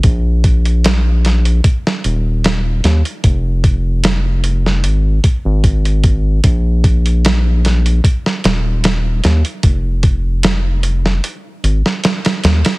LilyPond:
<<
  \new Staff \with { instrumentName = "Analog synth bass" } { \clef bass \time 4/4 \key aes \mixolydian \tempo 4 = 75 bes,,2 r8 ees,,4 ees,16 r16 | f,,2 aes,,8 r16 aes,,4~ aes,,16 | bes,,2 r8 ees,,4 ees,16 r16 | f,,2 r8 aes,,16 r8. ees,16 r16 | }
  \new DrumStaff \with { instrumentName = "Drums" } \drummode { \time 4/4 <hh bd>8 <hh bd>16 hh16 <hh sn>8 <hh sn>16 hh16 <hh bd>16 sn16 hh8 <hh sn>8 <hh sn>16 hh16 | <hh bd>8 <hh bd>8 <hh sn>8 hh16 sn16 hh8 <hh bd>8 <hh bd>16 hh16 <hh bd>8 | <hh bd>8 <hh bd>16 hh16 <hh sn>8 <hh sn>16 hh16 <hh bd>16 sn16 <hh sn>8 <hh sn>8 <hh sn>16 hh16 | <hh bd>8 <hh bd>8 <hh sn>8 hh16 sn16 hh8 hh16 sn16 <hh sn>16 <hh sn>16 <hh sn>16 <hh sn>16 | }
>>